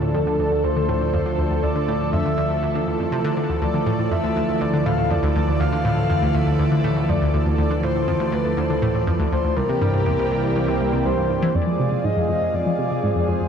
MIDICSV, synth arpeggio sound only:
0, 0, Header, 1, 2, 480
1, 0, Start_track
1, 0, Key_signature, -1, "minor"
1, 0, Tempo, 495868
1, 1582, Time_signature, 4, 2, 24, 8
1, 13052, End_track
2, 0, Start_track
2, 0, Title_t, "Synth arpeggio sound"
2, 0, Program_c, 0, 84
2, 20, Note_on_c, 0, 45, 72
2, 117, Note_off_c, 0, 45, 0
2, 139, Note_on_c, 0, 41, 100
2, 179, Note_off_c, 0, 41, 0
2, 260, Note_on_c, 0, 50, 70
2, 325, Note_off_c, 0, 50, 0
2, 381, Note_on_c, 0, 38, 97
2, 420, Note_off_c, 0, 38, 0
2, 502, Note_on_c, 0, 38, 73
2, 566, Note_off_c, 0, 38, 0
2, 620, Note_on_c, 0, 38, 98
2, 659, Note_off_c, 0, 38, 0
2, 739, Note_on_c, 0, 50, 75
2, 779, Note_off_c, 0, 50, 0
2, 859, Note_on_c, 0, 45, 98
2, 924, Note_off_c, 0, 45, 0
2, 979, Note_on_c, 0, 45, 71
2, 1076, Note_off_c, 0, 45, 0
2, 1100, Note_on_c, 0, 41, 98
2, 1139, Note_off_c, 0, 41, 0
2, 1218, Note_on_c, 0, 50, 73
2, 1284, Note_off_c, 0, 50, 0
2, 1340, Note_on_c, 0, 38, 91
2, 1379, Note_off_c, 0, 38, 0
2, 1462, Note_on_c, 0, 38, 75
2, 1526, Note_off_c, 0, 38, 0
2, 1580, Note_on_c, 0, 38, 95
2, 1620, Note_off_c, 0, 38, 0
2, 1700, Note_on_c, 0, 50, 73
2, 1739, Note_off_c, 0, 50, 0
2, 1821, Note_on_c, 0, 45, 96
2, 1886, Note_off_c, 0, 45, 0
2, 1942, Note_on_c, 0, 45, 69
2, 2038, Note_off_c, 0, 45, 0
2, 2062, Note_on_c, 0, 41, 94
2, 2101, Note_off_c, 0, 41, 0
2, 2184, Note_on_c, 0, 50, 72
2, 2247, Note_off_c, 0, 50, 0
2, 2301, Note_on_c, 0, 38, 99
2, 2340, Note_off_c, 0, 38, 0
2, 2422, Note_on_c, 0, 38, 76
2, 2486, Note_off_c, 0, 38, 0
2, 2544, Note_on_c, 0, 38, 93
2, 2581, Note_off_c, 0, 38, 0
2, 2665, Note_on_c, 0, 50, 73
2, 2702, Note_off_c, 0, 50, 0
2, 2784, Note_on_c, 0, 38, 72
2, 2847, Note_off_c, 0, 38, 0
2, 2904, Note_on_c, 0, 41, 72
2, 2967, Note_off_c, 0, 41, 0
2, 3022, Note_on_c, 0, 48, 95
2, 3086, Note_off_c, 0, 48, 0
2, 3140, Note_on_c, 0, 50, 99
2, 3205, Note_off_c, 0, 50, 0
2, 3262, Note_on_c, 0, 50, 70
2, 3358, Note_off_c, 0, 50, 0
2, 3382, Note_on_c, 0, 38, 77
2, 3478, Note_off_c, 0, 38, 0
2, 3501, Note_on_c, 0, 38, 97
2, 3540, Note_off_c, 0, 38, 0
2, 3621, Note_on_c, 0, 50, 72
2, 3660, Note_off_c, 0, 50, 0
2, 3741, Note_on_c, 0, 45, 97
2, 3805, Note_off_c, 0, 45, 0
2, 3862, Note_on_c, 0, 45, 70
2, 3958, Note_off_c, 0, 45, 0
2, 3983, Note_on_c, 0, 41, 95
2, 4021, Note_off_c, 0, 41, 0
2, 4102, Note_on_c, 0, 38, 92
2, 4166, Note_off_c, 0, 38, 0
2, 4223, Note_on_c, 0, 38, 100
2, 4261, Note_off_c, 0, 38, 0
2, 4344, Note_on_c, 0, 38, 74
2, 4407, Note_off_c, 0, 38, 0
2, 4462, Note_on_c, 0, 38, 96
2, 4500, Note_off_c, 0, 38, 0
2, 4583, Note_on_c, 0, 50, 77
2, 4621, Note_off_c, 0, 50, 0
2, 4704, Note_on_c, 0, 45, 97
2, 4767, Note_off_c, 0, 45, 0
2, 4822, Note_on_c, 0, 45, 76
2, 4918, Note_off_c, 0, 45, 0
2, 4942, Note_on_c, 0, 41, 95
2, 4981, Note_off_c, 0, 41, 0
2, 5063, Note_on_c, 0, 38, 97
2, 5126, Note_off_c, 0, 38, 0
2, 5183, Note_on_c, 0, 38, 94
2, 5221, Note_off_c, 0, 38, 0
2, 5303, Note_on_c, 0, 38, 75
2, 5367, Note_off_c, 0, 38, 0
2, 5422, Note_on_c, 0, 38, 98
2, 5460, Note_off_c, 0, 38, 0
2, 5541, Note_on_c, 0, 50, 74
2, 5580, Note_off_c, 0, 50, 0
2, 5661, Note_on_c, 0, 45, 96
2, 5726, Note_off_c, 0, 45, 0
2, 5780, Note_on_c, 0, 45, 69
2, 5877, Note_off_c, 0, 45, 0
2, 5902, Note_on_c, 0, 41, 96
2, 5940, Note_off_c, 0, 41, 0
2, 6022, Note_on_c, 0, 38, 94
2, 6086, Note_off_c, 0, 38, 0
2, 6141, Note_on_c, 0, 38, 97
2, 6180, Note_off_c, 0, 38, 0
2, 6260, Note_on_c, 0, 38, 74
2, 6325, Note_off_c, 0, 38, 0
2, 6380, Note_on_c, 0, 38, 94
2, 6419, Note_off_c, 0, 38, 0
2, 6500, Note_on_c, 0, 50, 76
2, 6539, Note_off_c, 0, 50, 0
2, 6621, Note_on_c, 0, 45, 101
2, 6686, Note_off_c, 0, 45, 0
2, 6741, Note_on_c, 0, 45, 73
2, 6838, Note_off_c, 0, 45, 0
2, 6862, Note_on_c, 0, 41, 96
2, 6900, Note_off_c, 0, 41, 0
2, 6982, Note_on_c, 0, 38, 98
2, 7046, Note_off_c, 0, 38, 0
2, 7102, Note_on_c, 0, 38, 94
2, 7140, Note_off_c, 0, 38, 0
2, 7221, Note_on_c, 0, 38, 78
2, 7286, Note_off_c, 0, 38, 0
2, 7339, Note_on_c, 0, 38, 98
2, 7379, Note_off_c, 0, 38, 0
2, 7460, Note_on_c, 0, 50, 77
2, 7499, Note_off_c, 0, 50, 0
2, 7581, Note_on_c, 0, 45, 97
2, 7645, Note_off_c, 0, 45, 0
2, 7700, Note_on_c, 0, 45, 72
2, 7797, Note_off_c, 0, 45, 0
2, 7819, Note_on_c, 0, 41, 101
2, 7859, Note_off_c, 0, 41, 0
2, 7938, Note_on_c, 0, 38, 97
2, 8004, Note_off_c, 0, 38, 0
2, 8058, Note_on_c, 0, 38, 100
2, 8098, Note_off_c, 0, 38, 0
2, 8179, Note_on_c, 0, 38, 73
2, 8245, Note_off_c, 0, 38, 0
2, 8298, Note_on_c, 0, 38, 99
2, 8339, Note_off_c, 0, 38, 0
2, 8421, Note_on_c, 0, 50, 74
2, 8460, Note_off_c, 0, 50, 0
2, 8539, Note_on_c, 0, 45, 100
2, 8605, Note_off_c, 0, 45, 0
2, 8661, Note_on_c, 0, 45, 75
2, 8758, Note_off_c, 0, 45, 0
2, 8780, Note_on_c, 0, 41, 98
2, 8820, Note_off_c, 0, 41, 0
2, 8901, Note_on_c, 0, 38, 98
2, 8965, Note_off_c, 0, 38, 0
2, 9022, Note_on_c, 0, 38, 95
2, 9061, Note_off_c, 0, 38, 0
2, 9141, Note_on_c, 0, 38, 75
2, 9206, Note_off_c, 0, 38, 0
2, 9261, Note_on_c, 0, 36, 99
2, 9300, Note_off_c, 0, 36, 0
2, 9381, Note_on_c, 0, 48, 75
2, 9420, Note_off_c, 0, 48, 0
2, 9500, Note_on_c, 0, 43, 96
2, 9565, Note_off_c, 0, 43, 0
2, 9620, Note_on_c, 0, 43, 73
2, 9717, Note_off_c, 0, 43, 0
2, 9741, Note_on_c, 0, 40, 99
2, 9780, Note_off_c, 0, 40, 0
2, 9863, Note_on_c, 0, 36, 95
2, 9926, Note_off_c, 0, 36, 0
2, 9983, Note_on_c, 0, 36, 98
2, 10021, Note_off_c, 0, 36, 0
2, 10100, Note_on_c, 0, 36, 76
2, 10165, Note_off_c, 0, 36, 0
2, 10221, Note_on_c, 0, 36, 100
2, 10260, Note_off_c, 0, 36, 0
2, 10340, Note_on_c, 0, 48, 78
2, 10379, Note_off_c, 0, 48, 0
2, 10461, Note_on_c, 0, 36, 76
2, 10525, Note_off_c, 0, 36, 0
2, 10581, Note_on_c, 0, 48, 75
2, 10645, Note_off_c, 0, 48, 0
2, 10700, Note_on_c, 0, 36, 97
2, 10765, Note_off_c, 0, 36, 0
2, 10819, Note_on_c, 0, 43, 75
2, 10859, Note_off_c, 0, 43, 0
2, 10938, Note_on_c, 0, 43, 72
2, 11036, Note_off_c, 0, 43, 0
2, 11059, Note_on_c, 0, 52, 104
2, 11124, Note_off_c, 0, 52, 0
2, 11180, Note_on_c, 0, 41, 100
2, 11219, Note_off_c, 0, 41, 0
2, 11299, Note_on_c, 0, 53, 75
2, 11339, Note_off_c, 0, 53, 0
2, 11419, Note_on_c, 0, 48, 98
2, 11485, Note_off_c, 0, 48, 0
2, 11538, Note_on_c, 0, 48, 71
2, 11636, Note_off_c, 0, 48, 0
2, 11657, Note_on_c, 0, 44, 98
2, 11698, Note_off_c, 0, 44, 0
2, 11777, Note_on_c, 0, 41, 99
2, 11844, Note_off_c, 0, 41, 0
2, 11898, Note_on_c, 0, 41, 99
2, 11938, Note_off_c, 0, 41, 0
2, 12019, Note_on_c, 0, 41, 77
2, 12085, Note_off_c, 0, 41, 0
2, 12138, Note_on_c, 0, 41, 99
2, 12178, Note_off_c, 0, 41, 0
2, 12257, Note_on_c, 0, 53, 77
2, 12298, Note_off_c, 0, 53, 0
2, 12376, Note_on_c, 0, 48, 98
2, 12443, Note_off_c, 0, 48, 0
2, 12499, Note_on_c, 0, 48, 74
2, 12597, Note_off_c, 0, 48, 0
2, 12619, Note_on_c, 0, 44, 95
2, 12659, Note_off_c, 0, 44, 0
2, 12739, Note_on_c, 0, 41, 97
2, 12804, Note_off_c, 0, 41, 0
2, 12859, Note_on_c, 0, 41, 95
2, 12899, Note_off_c, 0, 41, 0
2, 12980, Note_on_c, 0, 41, 78
2, 13045, Note_off_c, 0, 41, 0
2, 13052, End_track
0, 0, End_of_file